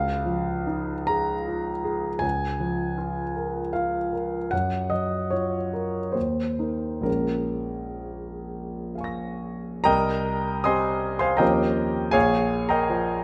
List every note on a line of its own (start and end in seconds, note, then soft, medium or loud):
0.00 2.19 C#2 soft
0.00 1.09 F5 medium
0.26 0.93 F3 soft
0.67 1.34 D#4 soft
1.07 1.71 G#4 soft
1.07 2.22 A#5 medium
1.48 2.08 F4 soft
1.84 2.23 G#4 soft
2.19 4.47 C#2 soft
2.19 3.73 G#5 medium
2.60 3.22 F3 soft
2.98 3.59 F4 soft
3.36 3.97 A#4 soft
3.73 4.36 F4 soft
3.73 4.12 F5 medium
4.13 4.52 A#4 soft
4.51 6.12 F#2 soft
4.51 4.91 F#5 medium
4.90 5.56 F#3 soft
4.90 5.31 D#5 medium
5.30 5.99 F4 soft
5.30 6.15 C#5 soft
5.73 6.16 A#4 soft
6.12 7.03 D#2 soft
6.12 7.05 C5 soft
6.59 7.02 D#4 soft
6.59 7.02 A#4 soft
7.01 9.80 A#1 soft
7.01 9.81 F3 soft
7.01 9.82 G#3 soft
7.01 9.82 C#4 soft
7.01 8.94 A#4 soft
8.95 9.83 F5 soft
8.95 9.84 G#5 soft
9.01 9.85 C#6 soft
9.01 9.87 A#6 soft
9.84 11.37 C2 soft
9.84 10.61 A#4 soft
9.84 10.61 D#5 soft
9.84 10.61 G5 soft
9.84 10.65 A#5 medium
10.64 11.37 C4 soft
10.64 11.37 G4 soft
10.64 11.18 D#5 soft
10.64 11.18 G#5 soft
10.64 11.18 C6 medium
10.64 11.22 D#6 medium
11.19 11.39 C5 soft
11.19 11.39 F5 soft
11.19 11.39 G#5 soft
11.19 11.40 C6 medium
11.37 12.12 D#2 soft
11.37 12.10 F3 soft
11.37 12.10 C4 soft
11.37 12.11 C#4 soft
11.37 12.11 G4 soft
11.37 12.10 A#4 soft
11.37 12.10 D#5 soft
11.37 12.10 G5 soft
11.37 12.13 A#5 soft
12.11 13.24 A#1 soft
12.11 12.67 G#4 soft
12.11 12.67 C#5 soft
12.11 12.67 F5 soft
12.11 12.70 G#5 medium
12.69 13.24 A#4 soft
12.69 13.24 D#5 soft
12.69 13.24 G5 soft
12.69 13.24 A#5 soft
12.90 13.24 F3 soft